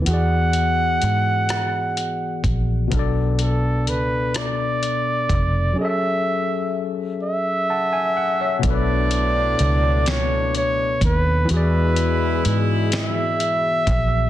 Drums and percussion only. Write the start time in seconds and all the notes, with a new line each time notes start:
0.06 closed hi-hat
0.53 closed hi-hat
1.02 closed hi-hat
1.49 cross-stick, closed hi-hat
1.97 closed hi-hat
2.44 kick, closed hi-hat
2.92 kick, closed hi-hat
3.39 closed hi-hat
3.87 closed hi-hat
4.34 cross-stick, closed hi-hat
4.83 closed hi-hat
5.29 kick, closed hi-hat
8.63 kick, closed hi-hat
9.11 closed hi-hat
9.59 closed hi-hat
10.06 snare, closed hi-hat
10.55 closed hi-hat
11.01 kick, closed hi-hat
11.49 closed hi-hat
11.96 closed hi-hat
12.45 closed hi-hat
12.92 snare, closed hi-hat
13.40 closed hi-hat
13.87 kick, closed hi-hat